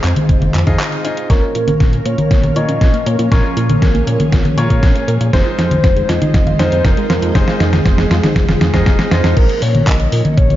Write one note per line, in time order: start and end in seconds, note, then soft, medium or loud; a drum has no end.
0.00 0.14 F2 loud
0.00 1.26 G#3 medium
0.00 1.26 C4 medium
0.00 0.51 D#4 medium
0.00 1.26 D#4 medium
0.00 0.51 F4 medium
0.00 1.26 F4 medium
0.00 0.51 G#4 medium
0.00 0.80 G#4 loud
0.00 0.51 C5 loud
0.00 1.26 C5 medium
0.00 clap medium
0.00 closed hi-hat medium
0.16 closed hi-hat medium
0.16 high conga medium
0.29 0.49 F1 loud
0.29 kick loud
0.29 closed hi-hat medium
0.42 closed hi-hat soft
0.42 high conga medium
0.54 0.64 F2 medium
0.54 clap medium
0.54 closed hi-hat medium
0.67 0.77 F2 loud
0.67 1.02 D#4 medium
0.67 1.02 F4 medium
0.67 1.02 G#4 medium
0.67 1.02 D#5 loud
0.67 kick medium
0.67 closed hi-hat medium
0.67 high conga medium
0.80 clap loud
0.80 closed hi-hat medium
0.92 closed hi-hat soft
1.05 1.27 D#4 medium
1.05 1.27 F4 medium
1.05 1.27 G#4 medium
1.05 1.27 D#5 loud
1.05 closed hi-hat medium
1.17 closed hi-hat medium
1.30 1.40 A#1 loud
1.30 5.29 F3 medium
1.30 5.29 A#3 medium
1.30 2.53 C#4 medium
1.30 5.29 C#4 medium
1.30 2.53 F4 medium
1.30 2.53 A#4 medium
1.30 3.30 A#4 medium
1.30 1.54 A#4 medium
1.30 2.53 C#5 loud
1.30 5.29 C#5 medium
1.30 kick loud
1.30 snare soft
1.30 closed hi-hat medium
1.43 1.55 A#4 medium
1.55 1.76 A#2 medium
1.55 1.66 F4 medium
1.55 2.07 A#4 loud
1.55 closed hi-hat medium
1.68 1.80 C#4 medium
1.68 closed hi-hat medium
1.68 high conga medium
1.80 2.01 A#1 medium
1.80 kick loud
1.80 snare soft
1.80 closed hi-hat medium
1.93 2.04 A#3 medium
1.93 closed hi-hat soft
2.05 2.16 A#2 medium
2.05 2.12 A#4 loud
2.05 2.30 C#5 loud
2.05 closed hi-hat medium
2.18 2.29 F4 medium
2.18 closed hi-hat medium
2.18 high conga medium
2.31 2.51 A#1 medium
2.31 2.58 C#5 loud
2.31 kick loud
2.31 snare medium
2.31 closed hi-hat medium
2.43 2.55 A#4 medium
2.43 closed hi-hat soft
2.43 high conga medium
2.56 2.66 A#2 loud
2.56 3.29 C#4 medium
2.56 2.67 F4 medium
2.56 3.29 F4 medium
2.56 3.29 A#4 medium
2.56 3.29 C#5 loud
2.56 3.08 D#5 loud
2.56 closed hi-hat medium
2.68 2.79 A#2 medium
2.68 2.80 C#4 medium
2.68 closed hi-hat medium
2.81 2.91 A#1 medium
2.81 kick loud
2.81 snare medium
2.81 closed hi-hat medium
2.94 3.05 A#3 medium
2.94 closed hi-hat soft
3.06 3.17 A#2 loud
3.06 3.13 A#4 loud
3.06 3.33 C#5 loud
3.06 closed hi-hat medium
3.19 3.29 A#2 medium
3.19 3.30 F4 medium
3.19 closed hi-hat medium
3.32 3.42 A#1 loud
3.32 4.55 C#4 medium
3.32 4.55 F4 medium
3.32 5.31 G#4 medium
3.32 4.55 A#4 medium
3.32 3.56 A#4 loud
3.32 4.55 C#5 loud
3.32 kick loud
3.32 snare medium
3.32 closed hi-hat medium
3.44 3.56 A#4 medium
3.57 3.77 A#2 medium
3.57 3.68 F4 medium
3.57 5.04 A#4 loud
3.57 closed hi-hat medium
3.69 3.81 C#4 medium
3.69 closed hi-hat medium
3.69 high conga medium
3.82 4.02 A#1 medium
3.82 kick loud
3.82 snare medium
3.82 closed hi-hat medium
3.95 4.05 A#3 medium
3.95 closed hi-hat soft
4.07 4.17 A#2 medium
4.07 4.14 A#4 loud
4.07 closed hi-hat medium
4.20 4.31 F4 medium
4.20 closed hi-hat medium
4.20 high conga medium
4.32 4.43 A#1 medium
4.32 kick loud
4.32 snare medium
4.32 closed hi-hat medium
4.45 4.57 A#4 medium
4.45 closed hi-hat soft
4.45 high conga medium
4.58 4.68 A#2 loud
4.58 5.30 C#4 loud
4.58 4.68 F4 medium
4.58 5.30 F4 medium
4.58 5.30 A#4 medium
4.58 5.30 C#5 loud
4.58 closed hi-hat medium
4.70 4.80 A#2 medium
4.70 4.82 C#4 medium
4.70 kick medium
4.70 closed hi-hat medium
4.83 4.93 A#1 loud
4.83 kick loud
4.83 snare medium
4.83 closed hi-hat medium
4.95 5.06 A#3 medium
4.95 closed hi-hat soft
5.08 5.18 A#2 medium
5.08 5.15 A#4 loud
5.08 closed hi-hat medium
5.21 5.31 A#2 medium
5.21 5.32 F4 medium
5.21 closed hi-hat medium
5.33 5.43 F1 loud
5.33 9.33 G#3 medium
5.33 9.33 C4 medium
5.33 6.56 D#4 loud
5.33 9.33 D#4 medium
5.33 6.56 F4 medium
5.33 9.33 F4 medium
5.33 6.56 G#4 medium
5.33 5.57 C5 loud
5.33 6.56 C5 loud
5.33 9.33 C5 medium
5.33 kick loud
5.33 snare medium
5.33 closed hi-hat medium
5.46 5.58 F4 medium
5.58 5.79 F2 medium
5.58 5.69 D#4 medium
5.58 6.10 C5 loud
5.58 snare medium
5.58 closed hi-hat medium
5.71 5.83 C4 medium
5.71 closed hi-hat medium
5.71 high conga medium
5.84 6.04 F1 medium
5.84 kick loud
5.84 snare medium
5.84 closed hi-hat medium
5.96 6.07 G#3 medium
5.96 closed hi-hat soft
6.09 6.19 F2 loud
6.09 6.15 F4 loud
6.09 6.34 D#5 loud
6.09 snare medium
6.09 closed hi-hat medium
6.22 6.32 D#4 medium
6.22 closed hi-hat medium
6.22 high conga medium
6.34 6.55 F1 medium
6.34 6.61 D#5 loud
6.34 kick loud
6.34 snare medium
6.34 closed hi-hat medium
6.47 6.59 F4 medium
6.47 closed hi-hat soft
6.47 high conga medium
6.59 6.70 F2 loud
6.59 7.32 D#4 loud
6.59 6.70 D#4 medium
6.59 7.32 F4 medium
6.59 7.32 G#4 medium
6.59 7.32 C5 loud
6.59 6.86 C5 loud
6.59 snare medium
6.59 closed hi-hat medium
6.72 6.82 F2 medium
6.72 6.84 C4 medium
6.72 closed hi-hat medium
6.85 6.95 F1 medium
6.85 7.37 A#4 loud
6.85 kick loud
6.85 snare medium
6.85 closed hi-hat medium
6.97 7.08 G#3 medium
6.97 closed hi-hat soft
7.10 7.20 F2 loud
7.10 7.16 F4 loud
7.10 snare medium
7.10 closed hi-hat medium
7.22 7.33 F2 loud
7.22 7.33 D#4 medium
7.22 closed hi-hat medium
7.35 7.45 F1 loud
7.35 8.58 D#4 loud
7.35 8.58 F4 medium
7.35 8.58 G#4 medium
7.35 8.61 G#4 medium
7.35 8.58 C5 loud
7.35 kick loud
7.35 snare medium
7.35 closed hi-hat medium
7.48 7.60 F4 medium
7.48 snare medium
7.60 7.81 F2 medium
7.60 7.71 D#4 medium
7.60 snare medium
7.60 closed hi-hat medium
7.73 7.85 C4 medium
7.73 snare medium
7.73 closed hi-hat medium
7.73 high conga medium
7.85 8.06 F1 medium
7.85 kick loud
7.85 snare medium
7.85 closed hi-hat medium
7.98 8.09 G#3 medium
7.98 snare medium
7.98 closed hi-hat soft
8.11 8.21 F2 medium
8.11 8.17 F4 loud
8.11 snare loud
8.11 closed hi-hat medium
8.23 8.34 D#4 medium
8.23 snare medium
8.23 closed hi-hat medium
8.23 high conga medium
8.36 8.56 F1 loud
8.36 kick loud
8.36 snare loud
8.36 closed hi-hat medium
8.49 8.60 F4 medium
8.49 snare medium
8.49 closed hi-hat soft
8.49 high conga medium
8.61 8.71 F2 loud
8.61 8.72 D#4 medium
8.61 9.13 G#4 loud
8.61 snare loud
8.61 closed hi-hat medium
8.74 8.84 F2 loud
8.74 8.86 C4 medium
8.74 9.08 D#4 medium
8.74 9.08 F4 medium
8.74 9.08 G#4 medium
8.74 9.08 D#5 loud
8.74 kick medium
8.74 snare medium
8.74 closed hi-hat medium
8.86 8.96 F1 loud
8.86 kick loud
8.86 snare loud
8.86 closed hi-hat medium
8.99 9.10 G#3 medium
8.99 snare medium
8.99 closed hi-hat soft
9.11 9.22 F2 medium
9.11 9.34 D#4 medium
9.11 9.18 F4 loud
9.11 9.34 F4 medium
9.11 9.34 G#4 medium
9.11 9.38 C5 loud
9.11 9.34 D#5 loud
9.11 snare loud
9.11 closed hi-hat medium
9.24 9.34 F2 loud
9.24 9.35 D#4 medium
9.24 snare loud
9.24 closed hi-hat medium
9.37 9.47 A#1 loud
9.37 10.56 F3 medium
9.37 10.56 A#3 medium
9.37 10.56 C#4 medium
9.37 10.56 A#4 medium
9.37 9.63 A#4 medium
9.37 10.56 C#5 medium
9.37 kick loud
9.37 closed hi-hat medium
9.37 crash loud
9.49 closed hi-hat soft
9.62 9.82 A#2 medium
9.62 9.89 C#5 loud
9.62 open hi-hat loud
9.75 closed hi-hat soft
9.75 high conga medium
9.87 10.07 A#1 medium
9.87 10.37 D#5 loud
9.87 kick loud
9.87 clap loud
9.87 closed hi-hat medium
10.00 closed hi-hat soft
10.12 10.23 A#2 loud
10.12 open hi-hat loud
10.25 closed hi-hat soft
10.25 high conga medium
10.37 10.56 A#1 medium
10.37 10.56 C#5 loud
10.37 kick loud
10.37 closed hi-hat medium
10.50 closed hi-hat soft
10.50 high conga medium